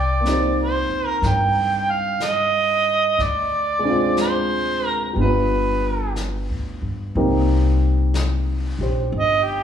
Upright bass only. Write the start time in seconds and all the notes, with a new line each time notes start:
Already playing: C2
0.90 muted upright bass stroke
1.22 G2
3.18 D2
5.16 G1
6.49 D2
6.82 G2
7.15 C2
8.79 A#1
9.12 G1